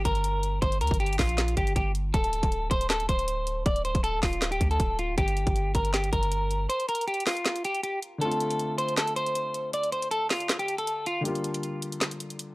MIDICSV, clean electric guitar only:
0, 0, Header, 1, 2, 480
1, 0, Start_track
1, 0, Key_signature, -1, "minor"
1, 0, Tempo, 379747
1, 784, Time_signature, 4, 2, 24, 8
1, 15861, End_track
2, 0, Start_track
2, 0, Title_t, "Clean electric guitar"
2, 0, Program_c, 0, 27
2, 65, Note_on_c, 0, 70, 88
2, 741, Note_off_c, 0, 70, 0
2, 783, Note_on_c, 0, 72, 86
2, 976, Note_off_c, 0, 72, 0
2, 1026, Note_on_c, 0, 70, 82
2, 1218, Note_off_c, 0, 70, 0
2, 1263, Note_on_c, 0, 67, 82
2, 1457, Note_off_c, 0, 67, 0
2, 1503, Note_on_c, 0, 65, 81
2, 1955, Note_off_c, 0, 65, 0
2, 1987, Note_on_c, 0, 67, 82
2, 2179, Note_off_c, 0, 67, 0
2, 2222, Note_on_c, 0, 67, 73
2, 2416, Note_off_c, 0, 67, 0
2, 2703, Note_on_c, 0, 69, 93
2, 3380, Note_off_c, 0, 69, 0
2, 3421, Note_on_c, 0, 72, 81
2, 3615, Note_off_c, 0, 72, 0
2, 3664, Note_on_c, 0, 69, 85
2, 3857, Note_off_c, 0, 69, 0
2, 3903, Note_on_c, 0, 72, 86
2, 4580, Note_off_c, 0, 72, 0
2, 4629, Note_on_c, 0, 74, 83
2, 4820, Note_off_c, 0, 74, 0
2, 4865, Note_on_c, 0, 72, 72
2, 5058, Note_off_c, 0, 72, 0
2, 5103, Note_on_c, 0, 69, 98
2, 5297, Note_off_c, 0, 69, 0
2, 5343, Note_on_c, 0, 65, 80
2, 5688, Note_off_c, 0, 65, 0
2, 5708, Note_on_c, 0, 67, 89
2, 5902, Note_off_c, 0, 67, 0
2, 5951, Note_on_c, 0, 69, 79
2, 6283, Note_off_c, 0, 69, 0
2, 6308, Note_on_c, 0, 65, 80
2, 6499, Note_off_c, 0, 65, 0
2, 6544, Note_on_c, 0, 67, 97
2, 7221, Note_off_c, 0, 67, 0
2, 7269, Note_on_c, 0, 70, 84
2, 7460, Note_off_c, 0, 70, 0
2, 7506, Note_on_c, 0, 67, 77
2, 7698, Note_off_c, 0, 67, 0
2, 7744, Note_on_c, 0, 70, 86
2, 8421, Note_off_c, 0, 70, 0
2, 8461, Note_on_c, 0, 72, 87
2, 8656, Note_off_c, 0, 72, 0
2, 8706, Note_on_c, 0, 70, 86
2, 8898, Note_off_c, 0, 70, 0
2, 8944, Note_on_c, 0, 67, 80
2, 9137, Note_off_c, 0, 67, 0
2, 9183, Note_on_c, 0, 65, 82
2, 9635, Note_off_c, 0, 65, 0
2, 9668, Note_on_c, 0, 67, 84
2, 9860, Note_off_c, 0, 67, 0
2, 9902, Note_on_c, 0, 67, 73
2, 10096, Note_off_c, 0, 67, 0
2, 10382, Note_on_c, 0, 69, 92
2, 11060, Note_off_c, 0, 69, 0
2, 11101, Note_on_c, 0, 72, 80
2, 11295, Note_off_c, 0, 72, 0
2, 11342, Note_on_c, 0, 69, 82
2, 11536, Note_off_c, 0, 69, 0
2, 11582, Note_on_c, 0, 72, 88
2, 12260, Note_off_c, 0, 72, 0
2, 12309, Note_on_c, 0, 74, 82
2, 12500, Note_off_c, 0, 74, 0
2, 12544, Note_on_c, 0, 72, 74
2, 12737, Note_off_c, 0, 72, 0
2, 12782, Note_on_c, 0, 69, 95
2, 12976, Note_off_c, 0, 69, 0
2, 13022, Note_on_c, 0, 65, 80
2, 13368, Note_off_c, 0, 65, 0
2, 13389, Note_on_c, 0, 67, 86
2, 13583, Note_off_c, 0, 67, 0
2, 13631, Note_on_c, 0, 69, 77
2, 13963, Note_off_c, 0, 69, 0
2, 13988, Note_on_c, 0, 65, 82
2, 14180, Note_off_c, 0, 65, 0
2, 15861, End_track
0, 0, End_of_file